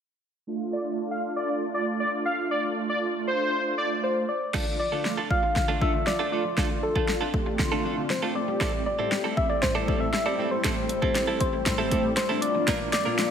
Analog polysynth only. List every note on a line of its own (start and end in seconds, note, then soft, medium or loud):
0.47 4.25 A3 medium
0.47 4.25 D4 medium
0.47 4.25 F4 medium
4.54 4.79 A3 medium
4.54 4.79 D4 medium
4.54 4.79 F4 medium
4.92 5.17 A3 medium
4.92 5.17 D4 medium
4.92 5.17 F4 medium
5.30 5.55 A3 medium
5.30 5.55 D4 medium
5.30 5.56 F4 medium
5.68 6.02 A3 medium
5.68 6.02 D4 medium
5.68 6.02 F4 medium
6.19 6.44 A3 medium
6.19 6.44 D4 medium
6.19 6.45 F4 medium
6.57 6.82 A3 medium
6.57 6.83 D4 medium
6.57 6.83 F4 medium
6.95 7.20 A3 medium
6.95 7.21 D4 medium
6.95 7.21 F4 medium
7.34 7.59 A3 medium
7.34 7.59 D4 medium
7.34 7.59 G4 medium
7.72 8.05 A3 medium
7.72 8.05 D4 medium
7.72 8.05 F4 loud
8.22 8.34 A3 medium
8.22 8.36 D4 medium
8.22 8.36 F4 medium
8.35 8.86 A3 medium
8.35 8.86 C4 medium
8.35 8.86 G4 loud
8.99 9.24 A3 medium
8.99 9.24 C4 medium
8.99 9.24 G4 medium
9.37 9.62 A3 medium
9.37 9.62 C4 medium
9.37 9.62 G4 medium
9.75 10.09 A3 medium
9.75 10.09 C4 medium
9.75 10.09 A4 medium
10.26 10.51 A3 medium
10.26 10.51 C4 medium
10.26 10.51 G4 medium
10.64 10.89 A3 medium
10.64 10.89 C4 medium
10.64 10.90 G4 medium
11.02 11.27 A3 medium
11.02 11.27 C4 medium
11.02 11.28 G4 medium
11.40 11.65 A3 medium
11.40 11.66 C4 medium
11.40 11.66 G4 medium
11.79 12.12 A3 medium
11.79 12.12 C4 medium
11.79 12.12 G4 medium
12.29 12.42 A3 medium
12.29 12.42 C4 medium
12.29 12.41 D4 medium
12.42 12.93 A#3 medium
12.42 12.93 D4 medium
12.42 12.93 F4 loud
13.06 13.31 A#3 medium
13.06 13.31 D4 medium
13.06 13.31 F4 medium